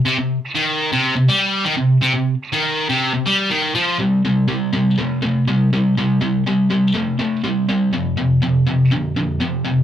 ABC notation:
X:1
M:4/4
L:1/16
Q:1/4=122
K:Cm
V:1 name="Distorted electric guitar" clef=bass
C, C,2 z E,3 C,2 C, G,3 E, C,2 | C, C,2 z E,3 C,2 C, G,2 E,2 F,2 | [K:Fmix] [C,G,]2 [C,G,]2 [C,G,]2 [C,G,]2 [C,A,]2 [C,A,]2 [C,G,]2 [C,G,]2 | [C,G,]2 [C,G,]2 [C,G,]2 [C,G,]2 [C,A,]2 [C,A,]2 [C,G,]2 [C,G,]2 |
[F,,C,]2 [F,,C,]2 [F,,C,]2 [F,,C,]2 [F,,D,]2 [F,,D,]2 [F,,C,]2 [F,,C,]2 |]